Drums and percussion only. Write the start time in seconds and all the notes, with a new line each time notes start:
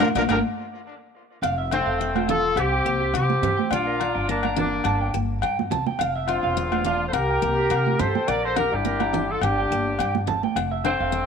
0.00 high conga, low agogo
0.16 high conga, low agogo
0.29 high conga, low agogo
1.43 low agogo
1.71 low agogo
2.15 high conga, low agogo
2.29 low conga
2.57 low agogo
3.14 low agogo
3.30 high conga
3.43 low conga
3.59 high conga
3.71 low agogo
4.01 low agogo
4.43 high conga, low agogo
4.58 low conga
4.84 low agogo
5.42 low agogo
5.59 high conga
5.71 low conga
5.87 high conga
5.99 low agogo
6.28 low agogo
6.72 high conga, low agogo
6.85 low conga
7.14 low agogo
7.71 low agogo
7.87 high conga
7.99 low conga
8.15 high conga
8.28 low agogo
8.56 low conga, low agogo
8.85 high conga
9.00 high conga, low agogo
9.13 low conga
9.41 low agogo
9.99 low agogo
10.15 high conga
10.28 low conga
10.43 high conga
10.56 low agogo
10.85 low agogo